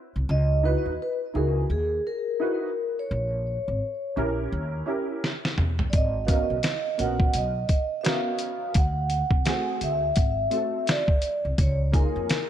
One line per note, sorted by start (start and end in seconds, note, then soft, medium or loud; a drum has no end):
0.16 0.26 C2 medium
0.29 0.74 C#2 loud
0.29 0.66 D#5 loud
0.63 0.90 D#4 medium
0.63 0.91 E4 medium
0.63 0.91 F#4 medium
0.63 0.91 B4 medium
0.63 0.81 B4 medium
0.86 0.97 D#2 medium
1.02 1.17 B4 medium
1.34 1.63 C#2 loud
1.34 1.61 D#4 medium
1.34 1.61 E4 medium
1.34 1.62 F#4 medium
1.34 1.62 G#4 medium
1.34 1.52 A#4 medium
1.70 1.98 D#2 medium
1.70 2.03 G#4 medium
2.07 3.01 A#4 loud
2.40 2.67 D#4 medium
2.40 2.67 E4 medium
2.40 2.68 F#4 medium
2.40 2.68 B4 medium
2.99 4.35 C#5 medium
3.11 3.56 A#1 medium
3.68 3.79 G#1 medium
4.16 4.45 A#1 medium
4.16 4.84 C#4 medium
4.16 4.85 E4 medium
4.16 4.86 G4 medium
4.16 4.86 A#4 medium
4.52 4.80 D#2 medium
4.86 5.30 C#4 medium
4.86 5.31 E4 medium
4.86 5.31 G4 medium
4.86 5.32 A#4 medium
5.24 snare medium
5.45 snare medium
5.58 5.86 E2 medium
5.58 mid tom medium
5.79 floor tom medium
5.90 6.38 G#1 medium
5.90 5.94 D5 medium
5.90 kick loud
5.90 closed hi-hat medium
5.96 6.25 D#5 loud
6.25 6.55 B3 medium
6.25 6.55 C#4 medium
6.25 6.55 F#4 medium
6.25 6.56 A#4 medium
6.25 6.30 F5 medium
6.25 kick medium
6.25 closed hi-hat medium
6.31 7.02 D#5 loud
6.50 6.61 B1 medium
6.63 snare medium
6.63 closed hi-hat medium
6.97 7.28 A#1 medium
6.97 7.06 A#3 soft
6.97 7.51 C#4 medium
6.97 7.51 F#4 medium
6.97 7.52 A#4 medium
6.97 7.36 F#5 medium
6.97 closed hi-hat medium
7.04 7.54 B3 medium
7.20 kick medium
7.34 7.63 B1 medium
7.34 8.02 D#5 medium
7.34 closed hi-hat medium
7.69 kick medium
7.69 closed hi-hat medium
8.01 8.75 B3 medium
8.01 8.75 C#4 medium
8.01 8.76 F#4 medium
8.01 8.06 E5 medium
8.01 closed hi-hat medium
8.06 8.76 A#4 medium
8.06 8.79 F5 medium
8.06 snare loud
8.39 closed hi-hat medium
8.74 9.20 D2 loud
8.74 9.86 F#5 loud
8.74 kick loud
8.74 closed hi-hat medium
9.10 closed hi-hat medium
9.31 9.42 C2 medium
9.31 kick medium
9.45 9.98 A3 medium
9.45 9.98 C4 medium
9.45 9.99 F#4 medium
9.45 9.99 G#4 medium
9.45 snare loud
9.45 closed hi-hat medium
9.81 10.09 D2 medium
9.81 10.13 E5 loud
9.81 closed hi-hat medium
10.14 10.45 G#1 medium
10.14 10.18 F#5 medium
10.14 kick medium
10.14 closed hi-hat medium
10.19 10.85 E5 loud
10.50 11.04 A3 medium
10.50 11.04 C4 medium
10.50 11.05 F#4 soft
10.50 11.05 A4 medium
10.50 closed hi-hat medium
10.87 11.42 D5 medium
10.87 snare loud
10.87 closed hi-hat medium
11.08 kick loud
11.22 closed hi-hat medium
11.45 11.56 C2 medium
11.58 12.03 C#2 loud
11.58 11.76 C#5 medium
11.58 kick loud
11.58 closed hi-hat medium
11.92 12.45 A#3 medium
11.92 12.46 D#4 medium
11.92 12.46 F4 medium
11.92 12.46 G#4 medium
11.92 kick medium
11.92 closed hi-hat medium
11.96 12.50 A#4 medium
12.16 12.26 F2 medium
12.29 snare loud
12.29 closed hi-hat medium